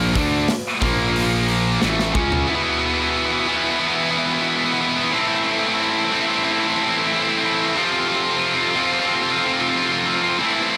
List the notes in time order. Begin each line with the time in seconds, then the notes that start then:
Already playing: A#1 A#2 F3 A#3
0.14 D2 D3 A3 D4, kick, open hi-hat
0.48 snare, open hi-hat
0.80 A#1 A#2 F3 A#3, kick, open hi-hat
1.16 open hi-hat
1.48 open hi-hat
1.81 A1 A2 E3 A3, snare
1.99 snare
2.13 C#2 C#3 G#3 C#4, kick
2.32 floor tom
2.46 E2 B2 B3 E4
2.51 E3 E4
2.56 B3
2.62 B3 E4
2.70 B3 E4
2.77 B3 E4
2.86 B3 E4
2.94 B3 E4
3.00 B3 E4
3.08 B3 E4
3.17 B3 E4
3.25 B3 E4
3.33 B3 E4
3.41 B3 E4
3.47 E2 B2 E3 B3 E4
3.56 B3 E4
3.64 B3 E4
3.71 B3 E4
3.79 B3 E4
3.88 B3 E4
3.95 B3 E4
4.03 B3 E4
4.11 B3 E4
4.18 B3 E4
4.26 B3 E4
4.34 B3 E4
4.41 B3 E4
4.49 B3 E4
4.56 B3 E4
4.65 B3 E4
4.72 B3 E4
4.81 B3 E4
4.88 B3 E4
4.96 B3 E4
5.04 B3 E4
5.12 A2 E3 A3 C4 E4
5.19 C4 E4
5.27 C4 E4
5.36 C4 E4
5.42 C4 E4
5.51 C4 E4
5.58 C4 E4
5.67 C4 E4
5.74 C4 E4
5.82 C4 E4
5.90 C4 E4
5.96 C4 E4
6.04 C4 E4
6.12 A2 E3 A3 C4 E4
6.21 C4 E4
6.28 C4 E4
6.35 C4 E4
6.43 C4 E4
6.51 C4 E4
6.60 C4 E4
6.68 C4 E4
6.76 C4 E4
6.82 C4 E4
6.90 C4 E4
6.97 C4 E4
7.06 C4 E4
7.13 C4 E4
7.21 C4 E4
7.29 C4 E4
7.37 C4 E4
7.44 C4 E4
7.52 C4 E4
7.59 C4 E4
7.68 C4 E4
7.76 F2 C3 F3 C4 F4
7.84 C4 F4
7.92 C4 F4
8.00 C4 F4
8.06 C4 F4
8.15 C4 F4
8.22 C4 F4
8.30 C4 F4
8.37 C4 F4
8.45 C4 F4
8.54 C4 F4
8.61 C4 F4
8.68 C4 F4
8.75 F2 C3 F3 C4 F4
8.84 C4 F4
8.92 C4 F4
9.00 C4 F4
9.06 C4 F4
9.14 C4 F4
9.21 C4 F4
9.29 C4 F4
9.37 C4 F4
9.45 C4 F4
9.52 C4 F4
9.60 C4 F4
9.68 C4 F4
9.76 C4 F4
9.83 C4 F4
9.90 C4 F4
9.98 C4 F4
10.06 C4 F4
10.14 C4 F4
10.21 C4 F4
10.29 C4 F4
10.38 A2 E3 C4 E4
10.42 A3 C4
10.47 E4
10.54 C4 E4
10.61 C4 E4
10.68 C4 E4